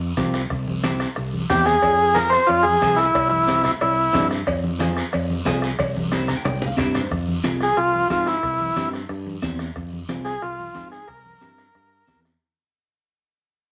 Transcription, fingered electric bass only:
0.00 0.11 F2 medium
0.18 0.44 C2 medium
0.51 1.04 C2 medium
1.17 1.44 C2 medium
1.50 1.76 E2 loud
1.83 2.36 F2 medium
2.49 2.75 F2 medium
2.82 3.09 C2 medium
3.15 3.68 C2 medium
3.82 4.08 C2 medium
4.14 4.40 G2 loud
4.47 5.00 F2 medium
5.14 5.40 F2 medium
5.46 5.72 C2 medium
5.79 6.32 C2 medium
6.45 6.72 C2 medium
6.78 7.05 G2 medium
7.11 7.37 F2 medium
7.44 7.71 C2 medium
7.77 8.04 C2 medium
8.10 8.36 G#2 medium
8.43 8.70 C2 medium
8.77 9.03 G2 medium
9.09 9.36 G2 medium
9.43 9.69 E2 medium
9.76 10.02 F2 medium
10.10 10.36 C2 medium
10.42 10.69 C2 medium
10.75 11.02 G#2 loud
11.08 11.35 C2 medium
11.41 11.68 G2 medium
11.75 12.01 G2 medium
12.08 12.35 E2 medium

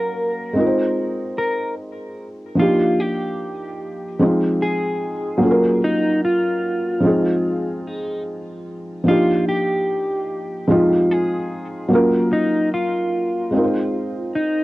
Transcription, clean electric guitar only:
0.00 1.33 A#4 medium
1.38 1.74 A#4 medium
2.60 3.00 F4 medium
3.00 4.58 G4 medium
4.62 5.79 G#4 medium
5.84 6.20 D#4 medium
6.25 7.87 F4 medium
7.87 8.23 D#4 medium
9.08 9.44 F4 medium
9.49 11.11 G4 medium
11.11 12.28 G#4 medium
12.33 12.69 D#4 medium
12.74 14.31 F4 medium
14.35 14.64 D#4 medium

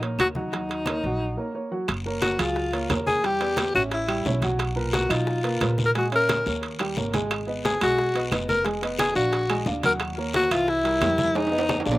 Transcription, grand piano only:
0.02 0.30 A#3 medium
0.02 0.30 A#4 medium
0.02 0.30 C#5 medium
0.36 0.50 F#3 medium
0.36 0.50 F#4 medium
0.36 0.50 F#5 medium
0.54 0.81 F#3 medium
0.54 0.82 F#4 medium
0.54 0.81 F#5 medium
0.89 1.02 A#3 medium
0.89 1.02 A#4 medium
0.89 1.02 C#5 medium
1.05 1.32 F#3 medium
1.05 1.32 F#4 medium
1.05 1.33 F#5 medium
1.37 1.51 A#3 medium
1.37 1.52 A#4 medium
1.37 1.52 C#5 medium
1.55 1.69 A#3 medium
1.55 1.69 A#4 medium
1.55 1.69 C#5 medium
1.71 1.85 F#3 medium
1.71 1.86 F#4 medium
1.71 1.86 F#5 medium
2.06 2.34 A#3 medium
2.06 2.34 A#4 medium
2.06 2.34 C#5 medium
2.38 2.67 F#3 medium
2.38 2.67 G#4 medium
2.38 2.67 F5 medium
2.73 2.87 A#3 medium
2.73 2.87 A#4 medium
2.73 2.87 C#5 medium
2.90 3.18 A#3 medium
2.90 3.18 A#4 medium
2.90 3.18 C#5 medium
3.24 3.38 G3 medium
3.24 3.38 G4 medium
3.24 3.38 G5 medium
3.41 3.69 B3 medium
3.41 3.69 B4 medium
3.41 3.69 D5 medium
3.74 4.02 C#4 medium
3.74 4.03 C#5 medium
3.74 4.03 E5 medium
4.08 4.22 G3 medium
4.08 4.22 G4 medium
4.08 4.23 G5 medium
4.26 4.40 C#4 medium
4.26 4.40 C#5 medium
4.26 4.40 E5 medium
4.43 4.70 F#3 medium
4.43 4.71 F#4 medium
4.43 4.71 F#5 medium
4.76 5.04 A#2 medium
4.76 5.04 A#4 medium
4.76 5.04 B4 medium
5.09 5.37 F#3 medium
5.09 5.38 D#4 medium
5.09 5.38 D#5 medium
5.44 5.58 A#3 medium
5.44 5.58 A#4 medium
5.44 5.58 B4 medium
5.61 5.89 A#2 medium
5.61 5.89 A#4 medium
5.61 5.89 B4 medium
5.96 6.09 G#3 medium
5.96 6.09 G#4 medium
5.96 6.10 G#5 medium
6.12 6.40 C#4 medium
6.12 6.40 C#5 medium
6.12 6.40 E5 medium
6.46 6.74 A#3 medium
6.46 6.74 A#4 medium
6.46 6.74 C#5 medium
6.80 6.94 G3 medium
6.80 6.94 G4 medium
6.80 6.94 G5 medium
6.97 7.11 A#3 medium
6.97 7.11 A#4 medium
6.97 7.11 C#5 medium
7.14 7.41 G#3 medium
7.14 7.41 G#4 medium
7.14 7.42 G#5 medium
7.47 7.75 B3 medium
7.47 7.75 B4 medium
7.47 7.75 D#5 medium
7.81 8.09 G#3 medium
7.81 8.09 G#4 medium
7.81 8.09 G#5 medium
8.15 8.29 B3 medium
8.15 8.29 B4 medium
8.15 8.29 D#5 medium
8.32 8.59 B3 medium
8.32 8.59 B4 medium
8.32 8.60 D#5 medium
8.65 8.79 G#3 medium
8.65 8.79 G#4 medium
8.65 8.80 G#5 medium
8.82 9.10 B3 medium
8.82 9.10 B4 medium
8.82 9.10 D#5 medium
9.15 9.43 D4 medium
9.15 9.43 D5 medium
9.15 9.43 F5 medium
9.50 9.64 G#3 medium
9.50 9.64 G#4 medium
9.50 9.64 G#5 medium
9.67 9.81 D4 medium
9.67 9.81 D5 medium
9.67 9.81 F5 medium
9.84 10.12 F#3 medium
9.84 10.12 F#4 medium
9.84 10.12 F#5 medium
10.18 10.45 A#3 medium
10.18 10.46 A#4 medium
10.18 10.46 C#5 medium
10.51 10.79 E3 medium
10.51 10.79 E4 medium
10.51 10.79 E5 medium
10.84 10.98 G3 medium
10.84 10.98 G4 medium
10.84 10.98 A#4 medium
11.01 11.29 G3 medium
11.01 11.29 G4 medium
11.01 11.29 A#4 medium
11.35 11.49 G#3 medium
11.35 11.50 G#4 medium
11.35 11.49 G#5 medium
11.52 11.80 B3 medium
11.52 11.80 B4 medium
11.52 11.80 D#5 medium
11.85 11.98 D4 medium
11.85 11.98 D5 medium
11.85 11.98 F5 medium

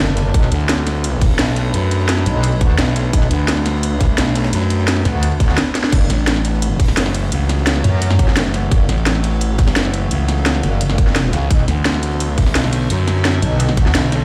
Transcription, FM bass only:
0.52 1.38 D2 loud
1.39 1.72 B1 loud
1.74 2.25 F#2 loud
2.79 3.12 B1 loud
3.31 3.92 D2 loud
3.92 4.17 C#2 loud
4.18 4.52 B1 loud
4.53 5.04 F#2 loud
6.10 6.96 A1 loud
6.97 7.31 F#1 loud
7.32 7.83 C#2 loud
8.37 8.70 F#1 loud
8.89 9.50 A1 loud
9.50 9.75 G#1 loud
9.76 10.10 F#1 loud
10.11 10.62 C#2 loud
11.33 11.49 C#2 loud
11.68 12.29 D2 loud
12.29 12.54 C#2 loud
12.55 12.89 B1 loud
12.90 13.41 F#2 loud
13.95 14.24 B1 loud

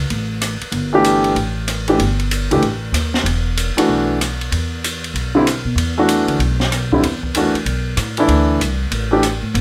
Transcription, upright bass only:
0.10 0.58 A1 medium
0.62 muted upright bass stroke soft
0.72 1.32 G1 medium
1.35 1.96 A1 medium
1.99 2.47 G1 medium
2.51 2.61 C#2 medium
2.62 2.92 A1 medium
2.92 3.22 D#2 medium
3.24 3.72 E1 medium
3.76 muted upright bass stroke soft
3.88 4.48 B1 medium
4.52 5.11 E2 medium
5.14 5.62 B1 medium
5.65 5.75 B2 medium
5.75 6.24 E2 medium
6.28 6.38 D2 medium
6.39 6.99 B1 medium
7.03 7.50 E2 medium
7.54 muted upright bass stroke soft
7.65 7.95 B1 medium
7.97 8.26 A2 medium
8.28 8.58 D2 medium
8.60 8.89 C2 medium
8.91 9.39 A1 medium
9.42 9.53 A2 medium
9.54 9.61 G1 medium

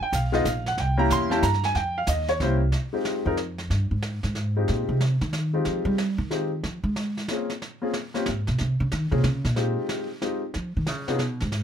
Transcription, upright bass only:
0.00 muted upright bass stroke soft
0.13 0.44 B1 medium
0.45 0.77 A#1 loud
0.77 1.09 C2 medium
1.11 1.42 E2 loud
1.43 1.74 G2 medium
1.75 2.07 F2 medium
2.08 2.39 D#2 loud
2.40 2.72 C2 medium
3.26 3.67 F2 medium
3.70 3.91 G2 medium
3.91 4.23 G#2 medium
4.24 4.65 G#2 medium
4.69 4.88 A#2 medium
4.89 5.21 C3 medium
5.21 5.63 D#3 medium
5.67 5.84 F3 medium
5.85 6.18 G3 loud
6.18 6.60 D#3 medium
6.64 6.83 F3 medium
6.84 7.25 G#3 medium
8.28 8.48 G#2 medium
8.48 8.59 B2 medium
8.61 8.80 C3 medium
8.80 8.91 C#3 medium
8.92 9.11 D#3 medium
9.12 9.23 C3 loud
9.24 9.44 C#3 loud
9.45 9.75 A#2 medium
10.55 10.75 F3 medium
10.77 10.88 D#3 medium
10.88 11.08 C#3 medium
11.08 11.21 C3 medium
11.21 11.40 B2 medium
11.42 11.63 G#2 medium

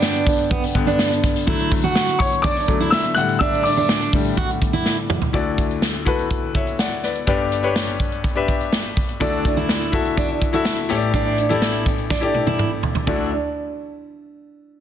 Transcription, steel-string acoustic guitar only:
0.00 0.25 D4 loud
0.51 0.62 B3 medium
0.87 1.10 D4 medium
1.47 1.70 E4 medium
1.84 2.18 F#4 medium
2.44 2.56 D4 medium
2.80 3.03 E4 medium
3.41 3.64 D4 loud
3.77 4.11 D4 medium
4.37 4.49 F#4 medium
4.73 4.96 E4 medium
9.21 9.44 D4 medium
9.57 9.91 E4 medium
10.17 10.29 D4 medium
10.54 10.77 E4 medium
11.14 11.37 D4 loud
11.50 11.84 E4 medium
12.10 12.22 D4 medium
12.47 12.70 E4 medium
13.07 13.30 D4 medium

